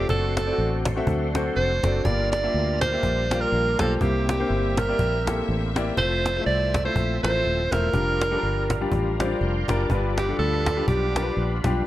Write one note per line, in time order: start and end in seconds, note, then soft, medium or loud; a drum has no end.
0.00 2.01 C4 medium
0.08 0.51 F#1 medium
0.08 2.04 F#3 medium
0.08 2.03 A3 medium
0.08 2.02 A3 medium
0.08 0.39 C4 medium
0.08 3.98 D4 medium
0.08 2.02 D4 medium
0.08 0.39 F#4 medium
0.08 2.02 F#4 medium
0.08 0.39 A4 medium
0.08 0.35 A4 medium
0.08 2.02 C5 medium
0.08 0.39 D5 medium
0.08 cajon bass loud
0.37 0.83 A4 medium
0.37 cajon slap loud
0.46 0.85 C4 medium
0.46 0.52 E4 soft
0.46 0.85 A4 medium
0.46 0.85 D5 medium
0.53 0.88 F#4 medium
0.58 1.00 A1 medium
0.58 cajon slap soft
0.85 cajon bass medium
0.85 cajon slap loud
0.96 1.24 C4 medium
0.96 1.24 F#4 medium
0.96 1.24 A4 medium
0.96 1.24 E5 medium
1.07 1.49 D2 medium
1.07 cajon bass medium
1.35 1.69 C4 medium
1.35 1.69 F#4 medium
1.35 1.70 A4 medium
1.35 1.70 C5 medium
1.35 cajon slap loud
1.56 1.80 F1 medium
1.56 2.06 C5 medium
1.56 cajon slap soft
1.83 2.02 F#1 medium
1.83 1.99 C4 medium
1.83 1.99 F#4 medium
1.83 2.00 A4 medium
1.83 2.00 D5 medium
1.83 cajon bass medium
1.83 cajon slap medium
2.04 2.47 G1 medium
2.04 2.78 G2 medium
2.04 3.97 G3 medium
2.04 5.93 G3 medium
2.04 5.93 A#3 medium
2.04 2.35 A#3 medium
2.04 3.97 D4 medium
2.04 3.97 F4 medium
2.04 2.35 F4 medium
2.04 3.99 F4 medium
2.04 2.35 G4 medium
2.04 3.97 A#4 medium
2.04 2.31 D5 loud
2.04 2.36 D5 medium
2.04 cajon bass loud
2.32 2.78 D5 medium
2.32 cajon slap loud
2.43 2.81 A#3 medium
2.43 2.81 F4 medium
2.43 2.81 G4 medium
2.43 2.82 E5 medium
2.54 2.96 D2 medium
2.54 cajon slap soft
2.81 3.42 C5 medium
2.81 cajon bass medium
2.81 cajon slap loud
2.92 3.20 A#3 medium
2.92 3.20 F4 medium
2.92 3.20 G4 medium
2.92 3.20 E5 medium
3.03 3.45 A#1 medium
3.03 cajon bass loud
3.31 3.65 A#3 medium
3.31 3.66 F4 medium
3.31 3.66 G4 medium
3.31 3.66 D5 medium
3.31 cajon slap loud
3.41 3.79 A#4 medium
3.52 3.76 A#1 medium
3.52 cajon slap soft
3.79 3.98 B1 medium
3.79 3.96 A#3 medium
3.79 3.96 F4 medium
3.79 3.96 G4 medium
3.79 3.96 A4 medium
3.79 3.96 C5 medium
3.79 cajon bass medium
3.79 cajon slap loud
3.96 4.02 A4 medium
4.01 4.43 C2 medium
4.01 4.74 C3 medium
4.01 5.93 G3 medium
4.01 4.31 A#3 medium
4.01 5.93 A#3 medium
4.01 7.90 C4 medium
4.01 5.93 C4 medium
4.01 5.93 E4 medium
4.01 4.31 E4 medium
4.01 4.29 G4 medium
4.01 4.31 G4 medium
4.01 4.32 C5 medium
4.01 7.90 E5 medium
4.01 cajon bass loud
4.29 4.80 G4 medium
4.29 cajon slap loud
4.39 4.77 A#3 medium
4.39 4.45 D4 soft
4.39 4.78 G4 medium
4.39 4.78 C5 medium
4.45 4.80 E4 medium
4.50 4.92 G1 medium
4.50 cajon slap soft
4.77 5.48 A#4 medium
4.77 cajon bass medium
4.77 cajon slap loud
4.88 5.16 A#3 medium
4.88 5.16 E4 medium
4.88 5.16 G4 medium
4.88 5.16 D5 medium
4.99 5.41 A#1 medium
4.99 cajon bass medium
5.27 5.61 A#3 medium
5.27 5.61 E4 medium
5.27 5.62 G4 medium
5.27 5.62 A4 medium
5.27 cajon slap loud
5.49 5.90 A1 medium
5.49 cajon slap soft
5.75 5.91 A#3 medium
5.75 5.92 E4 medium
5.75 5.92 G4 medium
5.75 5.92 D5 medium
5.75 cajon slap loud
5.97 6.39 F1 medium
5.97 7.89 F3 medium
5.97 9.86 F3 medium
5.97 7.91 A3 medium
5.97 6.28 A3 medium
5.97 7.89 C4 soft
5.97 6.27 E4 medium
5.97 6.28 F4 medium
5.97 7.89 A4 medium
5.97 6.43 C5 medium
5.97 6.28 C5 medium
5.97 7.90 E5 medium
5.97 cajon bass loud
6.26 cajon slap loud
6.36 6.41 G#3 soft
6.36 6.74 E4 medium
6.36 6.74 F4 medium
6.36 6.74 C5 medium
6.41 6.76 A3 medium
6.46 6.88 C2 medium
6.46 6.82 D5 medium
6.46 cajon slap soft
6.74 cajon bass medium
6.74 cajon slap loud
6.85 7.12 A3 medium
6.85 7.12 E4 medium
6.85 7.13 F4 medium
6.85 7.21 C5 medium
6.85 7.13 C5 medium
6.96 7.19 A#1 medium
6.96 cajon bass loud
7.23 7.41 A1 medium
7.23 7.58 A3 medium
7.23 7.58 E4 medium
7.23 7.58 F4 medium
7.23 7.29 A#4 medium
7.23 7.73 C5 loud
7.23 cajon slap loud
7.30 7.61 C5 medium
7.45 7.68 D#1 medium
7.72 7.90 E1 medium
7.72 7.88 A3 medium
7.72 7.88 E4 medium
7.72 7.88 F4 medium
7.72 9.19 A#4 medium
7.72 7.88 C5 medium
7.72 cajon bass medium
7.72 cajon slap loud
7.93 8.35 F1 medium
7.93 8.23 G3 medium
7.93 9.86 G3 medium
7.93 11.87 G3 medium
7.93 9.88 A#3 medium
7.93 8.24 D4 medium
7.93 9.86 D4 medium
7.93 11.82 D4 medium
7.93 9.86 F4 medium
7.93 8.24 F4 medium
7.93 9.86 A#4 medium
7.93 8.24 A#4 medium
7.93 cajon bass medium
8.21 cajon slap loud
8.31 8.69 G3 medium
8.31 8.70 D4 medium
8.31 8.70 F4 medium
8.31 8.37 A4 medium
8.38 8.73 A#4 medium
8.43 8.85 G1 medium
8.43 cajon slap soft
8.70 cajon bass medium
8.70 cajon slap loud
8.81 9.08 G3 medium
8.81 9.09 D4 medium
8.81 9.09 F4 medium
8.81 9.09 G4 medium
8.92 9.33 A1 medium
8.92 cajon bass medium
9.19 9.54 G3 medium
9.19 9.25 C4 medium
9.19 9.54 F4 medium
9.19 9.54 C5 medium
9.19 9.40 D5 medium
9.19 cajon slap loud
9.25 9.57 D4 medium
9.41 9.65 F1 medium
9.41 9.68 F5 medium
9.41 9.87 G5 medium
9.41 cajon slap soft
9.68 9.86 F#1 medium
9.68 9.84 G3 medium
9.68 9.84 D4 medium
9.68 9.85 F4 medium
9.68 9.85 A#4 medium
9.68 10.16 D5 medium
9.68 cajon bass medium
9.68 cajon slap medium
9.89 10.32 G1 medium
9.89 10.63 G2 medium
9.89 11.84 F3 medium
9.89 10.20 G3 medium
9.89 11.82 G3 medium
9.89 11.84 B3 medium
9.89 10.20 D4 medium
9.89 11.82 D4 medium
9.89 10.20 F4 medium
9.89 11.83 F4 medium
9.89 9.97 A#4 medium
9.89 10.20 B4 medium
9.89 cajon bass medium
9.96 11.85 B4 medium
10.18 10.38 G4 medium
10.18 cajon slap loud
10.28 10.66 G3 medium
10.28 10.66 D4 medium
10.28 10.66 F4 medium
10.28 10.67 A4 medium
10.39 10.80 D2 medium
10.39 10.84 A4 medium
10.39 cajon slap soft
10.66 cajon bass medium
10.66 cajon slap loud
10.77 11.05 G3 medium
10.77 11.05 D4 medium
10.77 11.05 F4 medium
10.77 11.05 G4 medium
10.88 11.29 B1 loud
10.88 11.61 G4 medium
10.88 cajon bass loud
11.15 11.50 G3 medium
11.15 11.50 D4 medium
11.15 11.50 F4 medium
11.15 11.21 A#4 medium
11.15 cajon slap loud
11.22 11.53 B4 medium
11.37 11.61 A#1 medium
11.37 cajon slap soft
11.64 11.82 B1 medium
11.64 11.80 G3 medium
11.64 11.81 D4 medium
11.64 11.81 F4 medium
11.64 11.81 G4 medium
11.64 cajon bass medium
11.64 cajon slap medium